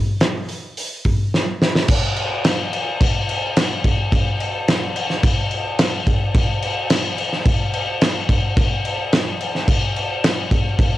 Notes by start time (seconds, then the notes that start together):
0.20 snare, open hi-hat
0.49 open hi-hat
0.77 open hi-hat
1.05 kick, open hi-hat
1.34 snare
1.62 snare
1.76 snare
1.88 kick, crash
2.17 crash
2.44 snare, crash
2.73 crash
3.01 kick, crash
3.29 crash
3.56 snare, crash
3.84 kick, crash
4.12 kick, crash
4.40 crash
4.68 snare, crash
4.96 crash
5.10 snare
5.23 kick, crash
5.51 crash
5.78 snare, crash
6.07 kick, crash
6.35 kick, crash
6.62 crash
6.90 snare, crash
7.18 crash
7.33 snare
7.46 kick, crash
7.74 crash
8.01 snare, crash
8.29 kick, crash
8.57 kick, crash
8.85 crash
9.13 snare, crash
9.41 crash
9.55 snare
9.68 kick, crash
9.96 crash
10.24 snare, crash
10.51 kick, crash
10.79 kick, crash